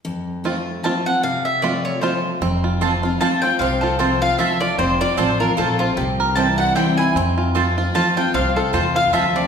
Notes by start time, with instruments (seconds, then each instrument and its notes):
0.05 steel-string acoustic guitar F2
0.44 steel-string acoustic guitar F3 A3 C4 F4, five-string banjo C4 F4
0.83 steel-string acoustic guitar F3 A3 C4 F4, five-string banjo C4 F4, mandolin A5
1.06 steel-string acoustic guitar C4 F4, mandolin F#5
1.23 steel-string acoustic guitar C3, mandolin F5
1.45 mandolin E5
1.62 steel-string acoustic guitar F3 A3 C4 F4, five-string banjo C4 F4, mandolin D5
1.85 mandolin C#5
2.01 steel-string acoustic guitar F3 A3 C4 F4, five-string banjo C4 F4, mandolin C5
2.41 upright bass F1, steel-string acoustic guitar F2, five-string banjo C4
2.64 five-string banjo F4
2.81 steel-string acoustic guitar F3 A3 C4 F4, mandolin C4 F4 C5 A5, five-string banjo F4
3.03 steel-string acoustic guitar C4 F4, five-string banjo F4
3.21 steel-string acoustic guitar F3 A3 C4 F4, mandolin C4 F4 C5 A5, five-string banjo F4, fiddle A5
3.42 five-string banjo C4, steel-string acoustic guitar F4, mandolin G5, fiddle G5
3.59 upright bass C2, steel-string acoustic guitar C3, five-string banjo C4, mandolin F5, fiddle F5
3.81 five-string banjo F4, mandolin A4, fiddle A4
3.99 steel-string acoustic guitar F3 A3 C4 F4, mandolin C4 F4 C5 A5, five-string banjo C4, fiddle C5
4.21 steel-string acoustic guitar C4 F4, five-string banjo F4, fiddle F5, mandolin F5
4.39 steel-string acoustic guitar F3 A3 C4 F4, mandolin C4 F4 C5 E5 A5, five-string banjo F4, fiddle E5
4.60 five-string banjo F4, mandolin D5, fiddle D5
4.78 upright bass F1, steel-string acoustic guitar F2, five-string banjo C4, fiddle C5, mandolin C5
5.00 five-string banjo F4, fiddle D5, mandolin D5
5.17 upright bass A1, steel-string acoustic guitar F3 A3 C4 F4, mandolin C4 F4 C5 A5, five-string banjo F4, fiddle C5
5.40 steel-string acoustic guitar C4 F4, five-string banjo F4, fiddle A#4, mandolin A#4
5.57 upright bass A#1, steel-string acoustic guitar F3 A3 C4 F4, mandolin C4 F4 A4 C5 A5, five-string banjo F4, fiddle A4
5.79 five-string banjo C4, mandolin F4, fiddle F4
5.97 upright bass C2, steel-string acoustic guitar C3, five-string banjo G4
6.20 five-string banjo A#4
6.36 steel-string acoustic guitar E3 G3 C4 E4, mandolin C4 E4 C5 G5 A5, five-string banjo C4, fiddle A5
6.58 five-string banjo G4, mandolin F#5, fiddle F#5
6.75 steel-string acoustic guitar E3 G3 C4 E4, mandolin C4 E4 C5 G5, five-string banjo C4, fiddle G5
6.98 steel-string acoustic guitar C4 E4, five-string banjo E4, mandolin G#5, fiddle G#5
7.15 upright bass F2, steel-string acoustic guitar F2, five-string banjo C4
7.38 five-string banjo F4
7.55 steel-string acoustic guitar F3 A3 C4 F4, mandolin C4 F4 C5 A5, five-string banjo F4
7.78 steel-string acoustic guitar C4 F4, five-string banjo F4
7.95 steel-string acoustic guitar F3 A3 C4 F4, mandolin C4 F4 C5 A5, five-string banjo F4, fiddle A5
8.17 steel-string acoustic guitar C4 F4, five-string banjo F4, mandolin G5, fiddle G5
8.34 upright bass C2, steel-string acoustic guitar C3, five-string banjo C4, fiddle F5, mandolin F5
8.56 five-string banjo F4, fiddle A4, mandolin A4
8.73 upright bass E2, steel-string acoustic guitar A3 C4 F4, mandolin C4 F4 C5 A5, five-string banjo F4, fiddle C5
8.95 five-string banjo F4, fiddle F5, mandolin F5
9.13 upright bass D2, steel-string acoustic guitar F3 A3 C4 F4, mandolin C4 F4 C5 E5 A5, five-string banjo F4, fiddle E5
9.34 five-string banjo C4, fiddle D5, mandolin D5